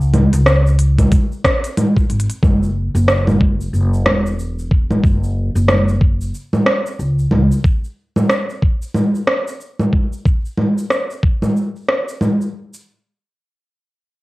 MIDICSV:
0, 0, Header, 1, 3, 480
1, 0, Start_track
1, 0, Tempo, 652174
1, 1783, Time_signature, 4, 2, 24, 8
1, 10470, End_track
2, 0, Start_track
2, 0, Title_t, "Upright bass"
2, 0, Program_c, 0, 32
2, 0, Note_on_c, 0, 37, 94
2, 205, Note_off_c, 0, 37, 0
2, 245, Note_on_c, 0, 37, 111
2, 795, Note_off_c, 0, 37, 0
2, 1544, Note_on_c, 0, 32, 84
2, 1661, Note_off_c, 0, 32, 0
2, 1787, Note_on_c, 0, 30, 79
2, 2128, Note_off_c, 0, 30, 0
2, 2168, Note_on_c, 0, 30, 97
2, 2717, Note_off_c, 0, 30, 0
2, 2746, Note_on_c, 0, 30, 85
2, 2986, Note_off_c, 0, 30, 0
2, 2986, Note_on_c, 0, 28, 83
2, 3677, Note_off_c, 0, 28, 0
2, 3707, Note_on_c, 0, 30, 85
2, 4048, Note_off_c, 0, 30, 0
2, 4089, Note_on_c, 0, 30, 100
2, 4637, Note_off_c, 0, 30, 0
2, 5147, Note_on_c, 0, 37, 80
2, 5351, Note_off_c, 0, 37, 0
2, 5389, Note_on_c, 0, 37, 91
2, 5504, Note_off_c, 0, 37, 0
2, 10470, End_track
3, 0, Start_track
3, 0, Title_t, "Drums"
3, 9, Note_on_c, 9, 82, 34
3, 83, Note_off_c, 9, 82, 0
3, 101, Note_on_c, 9, 46, 30
3, 101, Note_on_c, 9, 64, 80
3, 175, Note_off_c, 9, 46, 0
3, 175, Note_off_c, 9, 64, 0
3, 243, Note_on_c, 9, 46, 49
3, 249, Note_on_c, 9, 82, 68
3, 317, Note_off_c, 9, 46, 0
3, 323, Note_off_c, 9, 82, 0
3, 340, Note_on_c, 9, 37, 70
3, 346, Note_on_c, 9, 82, 50
3, 414, Note_off_c, 9, 37, 0
3, 420, Note_off_c, 9, 82, 0
3, 490, Note_on_c, 9, 82, 33
3, 564, Note_off_c, 9, 82, 0
3, 580, Note_on_c, 9, 46, 59
3, 654, Note_off_c, 9, 46, 0
3, 725, Note_on_c, 9, 36, 59
3, 725, Note_on_c, 9, 46, 49
3, 725, Note_on_c, 9, 64, 81
3, 731, Note_on_c, 9, 82, 65
3, 798, Note_off_c, 9, 36, 0
3, 798, Note_off_c, 9, 46, 0
3, 798, Note_off_c, 9, 64, 0
3, 805, Note_off_c, 9, 82, 0
3, 822, Note_on_c, 9, 36, 102
3, 822, Note_on_c, 9, 46, 60
3, 828, Note_on_c, 9, 82, 56
3, 895, Note_off_c, 9, 46, 0
3, 896, Note_off_c, 9, 36, 0
3, 902, Note_off_c, 9, 82, 0
3, 973, Note_on_c, 9, 82, 32
3, 1046, Note_off_c, 9, 82, 0
3, 1064, Note_on_c, 9, 36, 104
3, 1065, Note_on_c, 9, 37, 80
3, 1065, Note_on_c, 9, 46, 32
3, 1137, Note_off_c, 9, 36, 0
3, 1139, Note_off_c, 9, 37, 0
3, 1139, Note_off_c, 9, 46, 0
3, 1208, Note_on_c, 9, 46, 49
3, 1214, Note_on_c, 9, 82, 64
3, 1282, Note_off_c, 9, 46, 0
3, 1288, Note_off_c, 9, 82, 0
3, 1307, Note_on_c, 9, 46, 60
3, 1307, Note_on_c, 9, 64, 79
3, 1313, Note_on_c, 9, 82, 52
3, 1380, Note_off_c, 9, 46, 0
3, 1380, Note_off_c, 9, 64, 0
3, 1386, Note_off_c, 9, 82, 0
3, 1447, Note_on_c, 9, 36, 64
3, 1456, Note_on_c, 9, 82, 34
3, 1521, Note_off_c, 9, 36, 0
3, 1530, Note_off_c, 9, 82, 0
3, 1545, Note_on_c, 9, 46, 46
3, 1618, Note_off_c, 9, 46, 0
3, 1618, Note_on_c, 9, 46, 59
3, 1690, Note_off_c, 9, 46, 0
3, 1690, Note_on_c, 9, 46, 45
3, 1697, Note_on_c, 9, 82, 59
3, 1764, Note_off_c, 9, 46, 0
3, 1770, Note_off_c, 9, 82, 0
3, 1786, Note_on_c, 9, 36, 115
3, 1788, Note_on_c, 9, 64, 73
3, 1794, Note_on_c, 9, 82, 53
3, 1860, Note_off_c, 9, 36, 0
3, 1861, Note_off_c, 9, 64, 0
3, 1867, Note_off_c, 9, 82, 0
3, 1935, Note_on_c, 9, 82, 34
3, 2008, Note_off_c, 9, 82, 0
3, 2175, Note_on_c, 9, 82, 67
3, 2248, Note_off_c, 9, 82, 0
3, 2266, Note_on_c, 9, 37, 71
3, 2272, Note_on_c, 9, 82, 50
3, 2340, Note_off_c, 9, 37, 0
3, 2346, Note_off_c, 9, 82, 0
3, 2408, Note_on_c, 9, 64, 79
3, 2414, Note_on_c, 9, 82, 33
3, 2481, Note_off_c, 9, 64, 0
3, 2487, Note_off_c, 9, 82, 0
3, 2507, Note_on_c, 9, 36, 96
3, 2580, Note_off_c, 9, 36, 0
3, 2654, Note_on_c, 9, 82, 65
3, 2728, Note_off_c, 9, 82, 0
3, 2752, Note_on_c, 9, 82, 52
3, 2826, Note_off_c, 9, 82, 0
3, 2896, Note_on_c, 9, 82, 32
3, 2970, Note_off_c, 9, 82, 0
3, 2986, Note_on_c, 9, 37, 76
3, 2986, Note_on_c, 9, 64, 72
3, 3059, Note_off_c, 9, 37, 0
3, 3059, Note_off_c, 9, 64, 0
3, 3136, Note_on_c, 9, 82, 64
3, 3209, Note_off_c, 9, 82, 0
3, 3231, Note_on_c, 9, 82, 50
3, 3304, Note_off_c, 9, 82, 0
3, 3376, Note_on_c, 9, 82, 31
3, 3449, Note_off_c, 9, 82, 0
3, 3466, Note_on_c, 9, 36, 106
3, 3540, Note_off_c, 9, 36, 0
3, 3610, Note_on_c, 9, 64, 70
3, 3616, Note_on_c, 9, 82, 60
3, 3683, Note_off_c, 9, 64, 0
3, 3689, Note_off_c, 9, 82, 0
3, 3706, Note_on_c, 9, 36, 123
3, 3710, Note_on_c, 9, 82, 53
3, 3780, Note_off_c, 9, 36, 0
3, 3784, Note_off_c, 9, 82, 0
3, 3854, Note_on_c, 9, 82, 35
3, 3928, Note_off_c, 9, 82, 0
3, 4092, Note_on_c, 9, 82, 65
3, 4166, Note_off_c, 9, 82, 0
3, 4184, Note_on_c, 9, 37, 70
3, 4184, Note_on_c, 9, 64, 62
3, 4191, Note_on_c, 9, 82, 49
3, 4258, Note_off_c, 9, 37, 0
3, 4258, Note_off_c, 9, 64, 0
3, 4264, Note_off_c, 9, 82, 0
3, 4332, Note_on_c, 9, 82, 34
3, 4406, Note_off_c, 9, 82, 0
3, 4425, Note_on_c, 9, 36, 104
3, 4499, Note_off_c, 9, 36, 0
3, 4571, Note_on_c, 9, 82, 63
3, 4645, Note_off_c, 9, 82, 0
3, 4670, Note_on_c, 9, 82, 58
3, 4743, Note_off_c, 9, 82, 0
3, 4807, Note_on_c, 9, 64, 71
3, 4813, Note_on_c, 9, 82, 33
3, 4881, Note_off_c, 9, 64, 0
3, 4887, Note_off_c, 9, 82, 0
3, 4904, Note_on_c, 9, 37, 79
3, 4978, Note_off_c, 9, 37, 0
3, 5052, Note_on_c, 9, 82, 70
3, 5126, Note_off_c, 9, 82, 0
3, 5150, Note_on_c, 9, 82, 53
3, 5224, Note_off_c, 9, 82, 0
3, 5291, Note_on_c, 9, 82, 33
3, 5365, Note_off_c, 9, 82, 0
3, 5381, Note_on_c, 9, 64, 73
3, 5455, Note_off_c, 9, 64, 0
3, 5531, Note_on_c, 9, 82, 64
3, 5605, Note_off_c, 9, 82, 0
3, 5624, Note_on_c, 9, 36, 114
3, 5628, Note_on_c, 9, 82, 54
3, 5698, Note_off_c, 9, 36, 0
3, 5701, Note_off_c, 9, 82, 0
3, 5771, Note_on_c, 9, 82, 34
3, 5844, Note_off_c, 9, 82, 0
3, 6005, Note_on_c, 9, 64, 75
3, 6011, Note_on_c, 9, 82, 65
3, 6078, Note_off_c, 9, 64, 0
3, 6084, Note_off_c, 9, 82, 0
3, 6103, Note_on_c, 9, 37, 68
3, 6109, Note_on_c, 9, 82, 49
3, 6177, Note_off_c, 9, 37, 0
3, 6183, Note_off_c, 9, 82, 0
3, 6252, Note_on_c, 9, 82, 31
3, 6326, Note_off_c, 9, 82, 0
3, 6345, Note_on_c, 9, 36, 97
3, 6419, Note_off_c, 9, 36, 0
3, 6491, Note_on_c, 9, 82, 60
3, 6565, Note_off_c, 9, 82, 0
3, 6582, Note_on_c, 9, 64, 70
3, 6588, Note_on_c, 9, 82, 54
3, 6656, Note_off_c, 9, 64, 0
3, 6662, Note_off_c, 9, 82, 0
3, 6733, Note_on_c, 9, 82, 33
3, 6807, Note_off_c, 9, 82, 0
3, 6824, Note_on_c, 9, 37, 71
3, 6898, Note_off_c, 9, 37, 0
3, 6973, Note_on_c, 9, 82, 67
3, 7046, Note_off_c, 9, 82, 0
3, 7069, Note_on_c, 9, 82, 54
3, 7143, Note_off_c, 9, 82, 0
3, 7207, Note_on_c, 9, 64, 67
3, 7213, Note_on_c, 9, 82, 33
3, 7281, Note_off_c, 9, 64, 0
3, 7287, Note_off_c, 9, 82, 0
3, 7305, Note_on_c, 9, 36, 99
3, 7379, Note_off_c, 9, 36, 0
3, 7452, Note_on_c, 9, 82, 60
3, 7525, Note_off_c, 9, 82, 0
3, 7546, Note_on_c, 9, 36, 112
3, 7551, Note_on_c, 9, 82, 52
3, 7619, Note_off_c, 9, 36, 0
3, 7624, Note_off_c, 9, 82, 0
3, 7692, Note_on_c, 9, 82, 33
3, 7765, Note_off_c, 9, 82, 0
3, 7782, Note_on_c, 9, 64, 64
3, 7856, Note_off_c, 9, 64, 0
3, 7933, Note_on_c, 9, 82, 64
3, 8006, Note_off_c, 9, 82, 0
3, 8025, Note_on_c, 9, 37, 59
3, 8031, Note_on_c, 9, 82, 47
3, 8098, Note_off_c, 9, 37, 0
3, 8104, Note_off_c, 9, 82, 0
3, 8172, Note_on_c, 9, 82, 31
3, 8246, Note_off_c, 9, 82, 0
3, 8265, Note_on_c, 9, 36, 98
3, 8339, Note_off_c, 9, 36, 0
3, 8406, Note_on_c, 9, 64, 69
3, 8412, Note_on_c, 9, 82, 59
3, 8479, Note_off_c, 9, 64, 0
3, 8485, Note_off_c, 9, 82, 0
3, 8512, Note_on_c, 9, 82, 51
3, 8586, Note_off_c, 9, 82, 0
3, 8655, Note_on_c, 9, 82, 32
3, 8729, Note_off_c, 9, 82, 0
3, 8747, Note_on_c, 9, 37, 63
3, 8821, Note_off_c, 9, 37, 0
3, 8894, Note_on_c, 9, 82, 64
3, 8968, Note_off_c, 9, 82, 0
3, 8986, Note_on_c, 9, 64, 70
3, 8993, Note_on_c, 9, 82, 48
3, 9060, Note_off_c, 9, 64, 0
3, 9066, Note_off_c, 9, 82, 0
3, 9137, Note_on_c, 9, 82, 29
3, 9211, Note_off_c, 9, 82, 0
3, 9376, Note_on_c, 9, 82, 59
3, 9450, Note_off_c, 9, 82, 0
3, 10470, End_track
0, 0, End_of_file